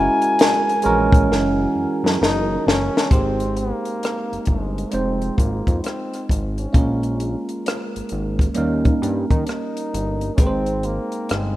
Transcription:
0.00 0.83 G#3 medium
0.00 0.84 C#4 medium
0.00 3.13 E4 medium
0.00 0.86 F#4 medium
0.00 0.86 A#4 medium
0.00 2.21 G#5 loud
0.22 closed hi-hat soft
0.39 snare loud
0.39 closed hi-hat medium
0.69 closed hi-hat soft
0.82 1.32 A#1 medium
0.82 2.59 E3 medium
0.82 2.58 G#3 medium
0.82 2.59 C#4 medium
0.82 2.59 F#4 medium
0.82 2.59 A#4 loud
0.82 closed hi-hat medium
1.12 kick loud
1.12 closed hi-hat soft
1.30 1.67 F#1 medium
1.30 snare medium
1.75 1.87 F#2 medium
2.04 2.17 F#2 medium
2.04 snare medium
2.21 2.58 F#1 medium
2.21 2.68 D#4 loud
2.21 snare medium
2.67 2.90 F#1 medium
2.67 3.14 C#4 loud
2.67 snare loud
2.97 snare medium
3.10 3.72 G#1 medium
3.10 4.85 G#3 medium
3.10 4.85 C4 medium
3.10 3.59 C4 medium
3.10 4.86 D#4 soft
3.10 4.86 G4 medium
3.10 4.86 C5 medium
3.10 kick loud
3.10 closed hi-hat medium
3.40 closed hi-hat soft
3.57 4.49 A#3 medium
3.57 closed hi-hat soft
3.85 closed hi-hat soft
4.03 cross-stick medium
4.03 closed hi-hat medium
4.32 4.39 G1 soft
4.32 closed hi-hat soft
4.45 4.85 G1 medium
4.45 4.95 G#3 medium
4.45 kick medium
4.45 closed hi-hat soft
4.78 closed hi-hat soft
4.91 5.30 F1 medium
4.91 6.67 G#3 medium
4.91 6.67 C4 soft
4.91 5.39 C4 medium
4.91 6.68 D#4 medium
4.91 6.68 F4 soft
4.91 6.68 C5 medium
4.91 closed hi-hat medium
5.22 closed hi-hat soft
5.38 5.62 G#1 medium
5.38 5.81 A#3 medium
5.38 kick medium
5.38 closed hi-hat medium
5.67 5.81 F2 medium
5.67 kick medium
5.67 closed hi-hat soft
5.79 5.85 B3 soft
5.83 6.26 C4 medium
5.83 cross-stick medium
5.83 closed hi-hat medium
6.14 cross-stick soft
6.14 closed hi-hat soft
6.29 6.67 G#1 medium
6.29 kick medium
6.29 closed hi-hat medium
6.58 7.45 C#4 medium
6.58 closed hi-hat soft
6.73 7.36 A#1 medium
6.73 8.48 G#3 medium
6.73 8.48 A#3 medium
6.73 8.49 C#4 medium
6.73 8.49 F4 medium
6.73 8.50 A#4 medium
6.73 kick loud
6.73 closed hi-hat medium
7.03 closed hi-hat soft
7.20 closed hi-hat soft
7.49 closed hi-hat soft
7.66 cross-stick loud
7.66 closed hi-hat medium
7.96 8.02 G#1 soft
7.96 closed hi-hat soft
8.09 8.49 G#1 medium
8.09 closed hi-hat soft
8.39 kick medium
8.39 cross-stick soft
8.39 closed hi-hat soft
8.54 8.94 D#2 medium
8.54 10.30 G3 medium
8.54 10.31 A#3 medium
8.54 10.31 C#4 medium
8.54 10.31 D#4 medium
8.54 10.32 A#4 medium
8.54 closed hi-hat medium
8.85 kick medium
8.85 closed hi-hat soft
9.02 9.26 G2 medium
9.02 closed hi-hat medium
9.31 9.44 D#3 medium
9.31 kick medium
9.31 closed hi-hat soft
9.43 9.51 D4 medium
9.43 closed hi-hat medium
9.49 10.34 D#4 medium
9.49 cross-stick medium
9.77 closed hi-hat soft
9.94 10.31 G1 medium
9.94 closed hi-hat medium
10.21 closed hi-hat soft
10.35 10.99 G#1 medium
10.35 11.56 G#3 medium
10.35 11.56 C4 medium
10.35 10.41 C#4 medium
10.35 11.56 D#4 medium
10.35 kick medium
10.35 closed hi-hat medium
10.39 10.87 C4 medium
10.39 10.47 B4 medium
10.39 11.56 G5 medium
10.47 11.56 C5 medium
10.66 closed hi-hat soft
10.83 11.34 A#3 medium
10.83 closed hi-hat soft
11.12 closed hi-hat soft
11.29 11.56 G1 medium
11.29 11.56 G#3 medium
11.29 cross-stick loud
11.29 closed hi-hat medium

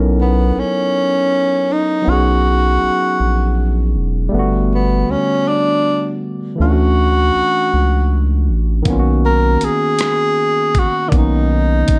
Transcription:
0.00 0.52 B1 loud
0.00 2.00 F#3 medium
0.00 2.01 B3 medium
0.00 2.03 C#4 medium
0.00 2.04 D#4 soft
0.00 4.35 E4 soft
0.00 4.34 A4 soft
0.00 2.05 A#4 medium
0.21 0.61 B3 medium
0.57 0.64 B1 soft
0.57 1.74 C#4 medium
1.73 2.11 D#4 medium
2.02 4.27 F#3 soft
2.02 4.28 B3 soft
2.07 2.78 B1 loud
2.07 4.29 C#4 soft
2.07 4.30 D#4 soft
2.07 3.97 F#4 medium
2.12 4.32 G#4 medium
2.83 2.90 A#1 soft
3.20 3.97 A#1 medium
3.96 4.29 E1 medium
4.29 6.53 G3 medium
4.29 6.55 A3 medium
4.33 5.05 G1 medium
4.33 6.57 D3 medium
4.33 6.56 B3 medium
4.39 6.58 F#4 medium
4.75 5.13 B3 medium
5.09 5.17 D2 soft
5.09 5.50 C#4 medium
5.48 6.23 D4 medium
6.56 8.80 E3 soft
6.56 8.81 A3 soft
6.60 7.31 D2 loud
6.60 8.82 C#4 soft
6.60 8.84 D4 soft
6.60 8.45 F#4 loud
6.66 6.69 F4 soft
6.72 8.88 F#4 medium
7.35 7.43 C#2 soft
7.74 8.50 C#2 medium
8.49 8.83 A1 medium
8.82 9.57 B1 loud
8.82 11.06 D#3 medium
8.82 11.08 A#3 medium
8.82 kick medium
8.82 closed hi-hat medium
8.87 11.09 B3 medium
8.87 11.10 C#4 medium
8.93 8.96 F4 soft
8.99 11.15 F#4 medium
9.26 9.66 A#4 medium
9.61 9.70 B1 soft
9.61 10.80 G#4 medium
9.61 closed hi-hat medium
9.99 cross-stick medium
9.99 closed hi-hat medium
10.75 11.11 F#4 medium
10.75 kick medium
10.75 closed hi-hat medium
11.08 11.99 D#3 soft
11.08 11.99 A#3 soft
11.08 11.18 D4 soft
11.12 11.84 B1 medium
11.12 11.99 B3 soft
11.12 11.99 C#4 soft
11.12 kick medium
11.12 closed hi-hat medium
11.16 11.99 D#4 medium
11.88 11.96 A#1 soft
11.88 kick medium
11.88 closed hi-hat medium

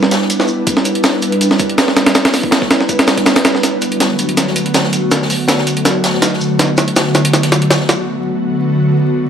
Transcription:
0.00 0.46 G3 medium
0.00 0.46 B3 medium
0.00 0.46 D4 medium
0.00 0.46 E4 medium
0.00 0.46 B4 loud
0.00 snare medium
0.11 snare loud
0.11 closed hi-hat medium
0.11 shaker medium
0.22 snare soft
0.30 closed hi-hat medium
0.30 shaker medium
0.40 snare medium
0.40 snare soft
0.48 shaker medium
0.67 1.95 G3 loud
0.67 1.95 B3 medium
0.67 1.95 D4 medium
0.67 1.95 E4 medium
0.67 1.95 B4 loud
0.67 kick loud
0.67 closed hi-hat medium
0.67 shaker medium
0.77 snare soft
0.85 closed hi-hat medium
0.85 shaker medium
0.95 closed hi-hat soft
1.04 snare loud
1.04 closed hi-hat medium
1.04 shaker medium
1.22 closed hi-hat medium
1.22 shaker medium
1.32 closed hi-hat soft
1.41 closed hi-hat medium
1.41 shaker medium
1.50 snare soft
1.50 snare medium
1.59 kick medium
1.59 closed hi-hat medium
1.59 shaker medium
1.69 closed hi-hat soft
1.78 snare loud
1.78 closed hi-hat medium
1.78 shaker medium
1.88 snare soft
1.96 snare loud
1.96 closed hi-hat medium
1.96 shaker medium
2.06 snare loud
2.06 closed hi-hat medium
2.15 3.43 G3 loud
2.15 3.43 B3 medium
2.15 3.43 D4 medium
2.15 3.43 E4 medium
2.15 3.43 B4 loud
2.15 snare loud
2.15 closed hi-hat medium
2.15 shaker medium
2.25 snare loud
2.25 snare medium
2.25 closed hi-hat medium
2.33 snare soft
2.33 open hi-hat medium
2.33 shaker medium
2.43 kick medium
2.51 snare loud
2.51 closed hi-hat medium
2.51 shaker medium
2.62 kick medium
2.62 snare medium
2.71 snare loud
2.71 closed hi-hat medium
2.71 shaker medium
2.81 snare soft
2.89 kick medium
2.89 closed hi-hat medium
2.89 shaker medium
2.99 snare loud
2.99 closed hi-hat medium
3.07 snare loud
3.07 closed hi-hat medium
3.07 shaker medium
3.17 kick medium
3.17 snare soft
3.17 closed hi-hat medium
3.26 snare loud
3.26 closed hi-hat medium
3.26 shaker medium
3.36 snare loud
3.36 closed hi-hat soft
3.36 closed hi-hat medium
3.45 snare loud
3.45 closed hi-hat medium
3.45 shaker medium
3.55 snare soft
3.63 4.91 D3 loud
3.63 4.91 F#3 medium
3.63 4.91 A3 medium
3.63 4.91 B3 medium
3.63 4.91 F#4 loud
3.63 snare soft
3.63 closed hi-hat medium
3.63 shaker medium
3.81 closed hi-hat medium
3.81 shaker medium
3.92 closed hi-hat soft
4.00 snare soft
4.00 snare loud
4.00 closed hi-hat medium
4.00 shaker medium
4.19 closed hi-hat medium
4.19 shaker medium
4.29 closed hi-hat soft
4.37 snare medium
4.37 closed hi-hat medium
4.37 shaker medium
4.47 snare soft
4.56 closed hi-hat medium
4.56 shaker medium
4.66 closed hi-hat soft
4.74 snare medium
4.74 snare loud
4.74 closed hi-hat medium
4.74 shaker medium
4.84 snare soft
4.93 closed hi-hat medium
4.93 shaker medium
5.11 6.39 D3 loud
5.11 6.39 F#3 medium
5.11 6.39 A3 medium
5.11 6.39 B3 medium
5.11 6.39 F#4 loud
5.11 snare medium
5.11 closed hi-hat medium
5.11 shaker medium
5.22 snare medium
5.30 open hi-hat medium
5.30 shaker medium
5.48 snare loud
5.48 snare medium
5.48 closed hi-hat medium
5.48 shaker medium
5.58 snare medium
5.67 closed hi-hat medium
5.67 shaker medium
5.77 closed hi-hat soft
5.85 snare medium
5.85 closed hi-hat medium
5.85 shaker medium
6.04 snare loud
6.04 closed hi-hat medium
6.04 shaker medium
6.14 snare soft
6.22 snare medium
6.22 closed hi-hat medium
6.22 shaker medium
6.33 snare soft
6.41 shaker medium
6.59 7.87 D3 loud
6.59 7.87 F#3 medium
6.59 7.87 A3 medium
6.59 7.87 B3 medium
6.59 7.87 F#4 loud
6.59 snare medium
6.59 closed hi-hat medium
6.59 shaker medium
6.77 snare medium
6.77 closed hi-hat medium
6.77 shaker medium
6.88 closed hi-hat soft
6.96 snare medium
6.96 snare loud
6.96 closed hi-hat medium
6.96 shaker medium
7.14 snare medium
7.14 closed hi-hat medium
7.14 shaker medium
7.25 closed hi-hat medium
7.33 snare medium
7.33 closed hi-hat medium
7.33 shaker medium
7.43 snare soft
7.43 closed hi-hat medium
7.52 snare medium
7.52 closed hi-hat medium
7.52 shaker medium
7.62 closed hi-hat soft
7.70 snare loud
7.70 snare medium
7.70 closed hi-hat medium
7.70 shaker medium
7.81 snare soft
7.89 snare medium
7.89 closed hi-hat medium
7.89 shaker medium
8.08 9.29 D3 loud
8.08 9.29 F#3 medium
8.08 9.29 A3 medium
8.08 9.29 B3 medium
8.08 9.29 F#4 loud

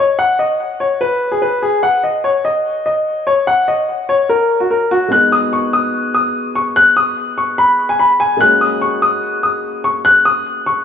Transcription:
0.00 0.16 C#5 medium
0.19 0.37 F#5 loud
0.39 0.57 D#5 medium
0.80 0.99 C#5 medium
1.01 1.30 B4 loud
1.32 1.41 G#4 medium
1.42 1.60 B4 medium
1.62 1.81 G#4 medium
1.83 2.01 F#5 loud
2.04 2.22 D#5 medium
2.24 2.42 C#5 medium
2.45 2.83 D#5 medium
2.86 3.24 D#5 medium
3.27 3.45 C#5 medium
3.47 3.66 F#5 loud
3.68 3.86 D#5 medium
4.09 4.27 C#5 medium
4.29 4.58 A#4 medium
4.60 4.69 F#4 medium
4.71 4.89 A#4 medium
4.91 5.10 F#4 medium
5.08 8.35 G#3 medium
5.08 8.36 B3 medium
5.08 8.36 D#4 medium
5.08 5.30 F#6 loud
5.14 8.37 F#4 medium
5.14 8.38 G#4 medium
5.32 5.51 D#6 medium
5.53 5.71 C#6 medium
5.73 6.12 D#6 medium
6.14 6.53 D#6 medium
6.55 6.74 C#6 medium
6.76 6.94 F#6 loud
6.97 7.15 D#6 medium
7.38 7.56 C#6 medium
7.58 7.87 B5 loud
7.89 7.98 G#5 medium
7.99 8.18 B5 medium
8.20 8.38 G#5 loud
8.37 10.85 G#3 medium
8.37 10.85 A#3 medium
8.37 10.85 C#4 medium
8.37 8.59 F#6 loud
8.42 10.85 F#4 medium
8.42 10.85 G#4 medium
8.61 8.79 D#6 medium
8.82 9.00 C#6 medium
9.02 9.41 D#6 medium
9.43 9.82 D#6 medium
9.84 10.03 C#6 medium
10.05 10.23 F#6 loud
10.25 10.44 D#6 medium
10.66 10.85 C#6 medium

